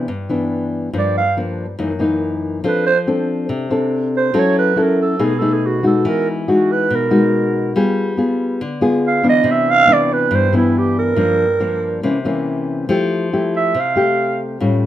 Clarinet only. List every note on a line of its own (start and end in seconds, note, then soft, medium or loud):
0.98 1.16 D5 medium
1.18 1.36 F5 medium
2.68 2.86 B4 medium
2.87 2.99 C5 medium
4.17 4.41 C5 medium
4.39 4.58 C#5 medium
4.59 4.84 B4 medium
4.82 5.01 A#4 medium
5.02 5.26 A4 medium
5.25 5.40 G#4 medium
5.38 5.54 A4 medium
5.53 5.68 G#4 medium
5.66 5.86 F#4 medium
5.87 6.11 A4 medium
6.09 6.29 A#4 medium
6.30 6.46 D#4 soft
6.53 6.74 F#4 medium
6.72 6.96 B4 medium
6.95 7.78 A#4 medium
9.08 9.26 F5 medium
9.29 9.53 D#5 medium
9.51 9.72 E5 medium
9.71 9.95 F5 loud
9.93 10.15 D5 medium
10.13 10.37 B4 medium
10.35 10.55 C5 medium
10.57 10.80 E4 medium
10.78 10.98 G4 medium
10.99 12.01 A#4 medium
13.56 13.82 E5 medium
13.81 14.42 F5 medium